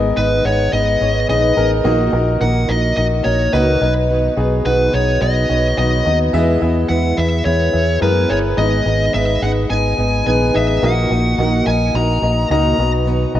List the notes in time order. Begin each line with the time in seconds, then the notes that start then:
Already playing: G#1 G#2 G#3 B3 D#4 G#4 B4 D#5
0.16 G#1 G#2 D#3 G#3 B3 D#4 B4 D#5
0.44 G#1 G#3 B3 D#4 G#4 B4 C#5 F#5
0.72 G#1 G#3 B3 D#4 G#4 B4 D#5
1.00 G#1 G#3 B3 D#4 G#4 B4 C#5
1.28 A#1 G#2 D#3 G#3 B3 D#4 G#4 B4 D#5
1.56 A1 G#3 B3 D#4 G#4 A#4
1.84 A#1 A#2 D#3 A#3 D#4 F#4 A#4 D#5
2.12 A#1 A#3 D#4 F#4 A#4
2.40 A#1 A#2 D#3 A#3 D#4 F#4 A#4 F#5
2.68 A#1 A#3 D#4 F#4 A#4 D#5
2.96 A#1 A#3 D#4 F#4 A#4 D#5
3.24 A#1 A#3 D#4 F#4 A#4 C#5 D#5
3.52 C#2 A#2 D#3 A#3 D#4 F#4 A#4 B4 D#5
3.80 B1 B2 F#3 B3 D#4 F#4 B4 D#5
4.08 B2 D#3 F#3 B3 D#4 B4
4.36 B1 F#3 B3 D#4 F#4 G#4 B4
4.65 B1 B2 D#3 F#3 B3 D#4 F#4 B4 F#5
4.92 B1 F#3 B3 D#4 F#4 G#4 B4 C#5
5.21 B1 F#3 B3 D#4 F#4 B4 D#5
5.49 B1 F#3 B3 D#4 F#4 B4 C#5
5.77 B1 B2 D#3 F#3 B3 D#4 F#4 B4 D#5
6.05 D#2 F#3 B3 D#4 F#4 B4 D#5
6.33 E2 E3 G#3 B3 E4 G#4 B4 E5
6.61 E2 B3 E4 G#4 B4 E5
6.89 E2 E3 G#3 B3 E4 G#4 B4 E5 F#5
7.17 E2 B3 E4 G#4 B4 E5
7.44 E2 G#3 B3 E4 G#4 B4 C#5 E5
7.72 E2 B3 E4 G#4 B4 E5
7.76 B3
8.01 F#2 E3 G#3 B3 E4 G#4 A#4 B4
8.29 G1 B3 E4 G#4 B4 C#5
8.57 G#1 G#2 D#3 G#3 B3 D#4 G#4 B4 D#5
8.85 G#1 G#3 B3 D#4 G#4 B4 D#5
9.13 G#1 G#2 D#3 G#3 B3 D#4 G#4 B4 D#5 E5
9.41 G#1 G#3 B3 D#4 G#4 B4 D#5 F#5
9.69 G#1 G#3 B3 D#4 G#4 B4 D#5 G#5
9.97 G#1 G#3 B3 D#4 G#4 B4 D#5
10.26 A#1 G#2 D#3 G#3 B3 D#4 G#4 B4 G#5
10.53 A1 G#3 B3 D#4 G#4 B4 D#5 E5
10.82 A#1 A#2 D#3 A#3 D#4 F#4 A#4 D#5 F#5
11.09 A#1 A#3 D#4 F#4 A#4 D#5
11.38 A#1 A#2 D#3 A#3 D#4 F#4 A#4 D#5
11.66 A#1 A#3 D#4 F#4 A#4 D#5 G#5
11.94 A#1 A#3 D#4 F#4 A#4 D#5 A#5
12.22 A#1 A#3 D#4 F#4 A#4 D#5
12.50 C#2 A#2 D#3 A#3 D#4 F#4 A#4 D#5 A#5
12.78 B1 B2 F#3 B3 D#4 F#4 B4 D#5
13.06 B2 D#3 F#3 B3 D#4 B4
13.34 B1 B3 D#4 F#4 B4 D#5